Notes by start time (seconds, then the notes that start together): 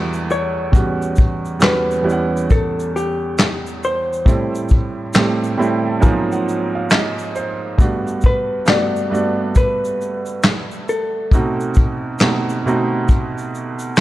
Already playing: E2 G3 A3 B3 D4 E4 F#4
0.13 shaker
0.30 C#5, shaker
0.72 E2 G3 B3 C#4 F#4, kick, closed hi-hat, shaker
1.02 shaker
1.16 kick, shaker
1.45 shaker
1.59 E2 G3 B3 C#4 F#4, snare, clap, closed hi-hat, shaker
1.64 B4
1.91 shaker
2.02 E2 G3 B3 C#4 E4
2.09 F#5, shaker
2.37 shaker
2.50 A4, kick, closed hi-hat, shaker
2.80 shaker
2.96 G4, shaker
3.38 snare, clap, closed hi-hat, shaker
3.66 shaker
3.83 C5, shaker
4.13 shaker
4.25 A2 G3 A3 C4 E4, kick, closed hi-hat, shaker
4.55 shaker
4.68 kick, shaker
5.13 A2 G3 A3 C4, snare, clap, closed hi-hat, shaker
5.17 G4
5.44 shaker
5.57 A2 G3 A3 C4 E4 B5
5.62 shaker
5.86 A5
6.00 G#2 F3 F#3 A#3 B3 D#4 G#5, kick, closed hi-hat, shaker
6.08 C4
6.32 F#5, shaker
6.49 shaker
6.75 F5
6.90 D#5, snare, clap, closed hi-hat, shaker
7.18 shaker
7.35 C5, shaker
7.78 G2 A3 B3 D4 F#4, kick, closed hi-hat, shaker
8.07 shaker
8.21 kick, shaker
8.26 B4
8.66 G2 A3 B3 D4 F#4 D5, snare, clap, closed hi-hat, shaker
8.96 shaker
9.10 G2 A3 B3 D4 F#4
9.14 shaker
9.55 B4, kick, closed hi-hat, shaker
9.85 shaker
10.01 shaker
10.26 shaker
10.43 snare, clap, closed hi-hat, shaker
10.71 shaker
10.88 A4, shaker
11.31 B2 A3 C4 D#4 F#4, kick, closed hi-hat, shaker
11.60 shaker
11.74 kick, shaker
12.19 B2 A3 C4, snare, clap, closed hi-hat, shaker
12.23 D#4 F#4
12.49 shaker
12.66 B2 A3 C4 D#4 F#4, shaker
13.08 kick, closed hi-hat, shaker
13.38 shaker
13.55 shaker
13.79 shaker
13.96 closed hi-hat, shaker